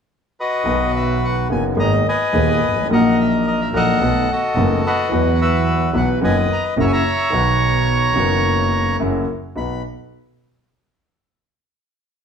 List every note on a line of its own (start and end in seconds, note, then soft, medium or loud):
0.40 1.48 F#4 medium
0.40 1.48 B4 medium
0.40 0.92 D#5 medium
0.64 1.46 B1 medium
0.64 1.46 B2 medium
0.64 1.45 D#3 medium
0.64 1.46 F#3 soft
0.64 1.46 B3 soft
0.64 1.47 F#4 medium
0.96 1.24 E5 medium
1.25 1.37 F#5 medium
1.50 1.74 F#1 medium
1.50 1.74 F#2 medium
1.50 1.74 D#3 soft
1.50 1.74 F#3 soft
1.50 1.74 B3 soft
1.50 1.74 F#4 medium
1.50 1.64 G#5 medium
1.76 2.01 G#1 medium
1.76 2.02 G#1 medium
1.76 2.01 G#2 medium
1.76 2.01 D#3 medium
1.76 2.01 A#3 soft
1.76 2.01 B3 soft
1.76 2.01 G#4 medium
1.76 2.07 D#5 medium
1.76 1.92 A#5 medium
2.09 2.87 B4 medium
2.09 2.87 D#5 medium
2.09 2.87 G#5 medium
2.33 2.57 D#1 medium
2.33 2.57 D#2 medium
2.33 2.58 D#2 medium
2.33 2.57 D#3 medium
2.33 2.57 A#3 soft
2.33 2.57 B3 medium
2.33 2.57 G#4 medium
2.62 2.88 G#1 soft
2.69 2.76 G1 soft
2.76 2.83 G#1 soft
2.83 2.90 A1 medium
2.89 3.68 A#1 medium
2.89 3.69 A#1 medium
2.89 3.70 A#2 medium
2.89 3.68 D#3 medium
2.89 3.69 F#3 medium
2.89 3.70 A#3 medium
2.89 3.70 F#4 medium
2.93 3.99 A#4 medium
2.93 3.46 D#5 medium
2.93 3.17 F#5 medium
3.21 3.33 E5 medium
3.47 3.61 D#5 medium
3.61 3.73 E5 medium
3.72 3.96 A#1 medium
3.72 3.97 A#1 medium
3.72 3.97 A#2 medium
3.72 3.97 D#3 medium
3.72 3.97 F#3 soft
3.72 3.97 A#3 medium
3.72 3.97 F#4 medium
3.72 4.32 F#5 medium
3.76 4.30 A4 medium
3.76 4.30 D#5 medium
4.00 4.24 B1 medium
4.00 4.25 B2 medium
4.00 4.24 D#3 medium
4.00 4.24 A3 medium
4.00 4.24 B3 medium
4.00 4.25 F#4 medium
4.31 4.86 F#4 medium
4.31 5.09 A4 medium
4.31 4.81 D#5 medium
4.55 4.79 F#1 medium
4.55 4.80 F#1 medium
4.55 4.80 F#2 medium
4.55 4.79 D#3 medium
4.55 4.80 A3 medium
4.55 4.80 B3 medium
4.55 4.80 F#4 medium
4.86 5.92 F#4 medium
4.86 5.41 B4 soft
4.86 5.30 D#5 medium
5.10 5.90 E2 medium
5.10 5.90 E3 medium
5.10 5.89 F#3 medium
5.10 5.90 B3 medium
5.10 5.91 F#4 medium
5.35 5.40 F#5 medium
5.41 6.19 B4 medium
5.41 5.97 E5 medium
5.93 6.17 B1 medium
5.93 6.17 B2 medium
5.93 6.17 E3 medium
5.93 6.17 F#3 medium
5.93 6.17 B3 medium
5.93 6.17 F#4 medium
5.93 6.09 F#5 medium
6.21 6.45 F#1 medium
6.21 6.45 F#2 medium
6.21 6.45 D#3 medium
6.21 6.45 F#3 medium
6.21 6.45 B3 medium
6.21 6.45 F#4 medium
6.21 6.74 B4 medium
6.21 6.75 D#5 medium
6.21 6.36 G#5 medium
6.53 6.64 A#5 medium
6.77 7.00 F#1 medium
6.77 7.01 F#2 medium
6.77 7.00 C#3 medium
6.77 7.00 F#3 medium
6.77 7.00 A#3 medium
6.77 7.01 E4 medium
6.77 6.92 C#5 medium
6.77 6.92 E5 soft
6.77 6.85 A#5 medium
6.87 6.92 G#5 medium
6.93 8.97 C#5 medium
6.93 7.31 E5 medium
6.93 8.96 A#5 medium
7.30 8.11 B1 medium
7.30 8.11 B2 medium
7.30 8.10 D#3 medium
7.30 8.11 F#3 medium
7.30 8.11 B3 medium
7.30 8.12 F#4 medium
8.14 8.95 F#1 medium
8.14 8.95 F#2 medium
8.14 8.95 D#3 medium
8.14 8.95 F#3 medium
8.14 8.96 B3 soft
8.14 8.96 F#4 medium
8.99 9.24 F#1 medium
8.99 9.23 F#2 medium
8.99 9.23 C#3 medium
8.99 9.24 F#3 medium
8.99 9.24 A#3 medium
8.99 9.23 E4 medium
9.55 9.79 B1 soft
9.55 9.79 B3 soft
9.55 9.79 D#4 soft
9.55 9.79 F#4 soft
9.55 9.82 B5 medium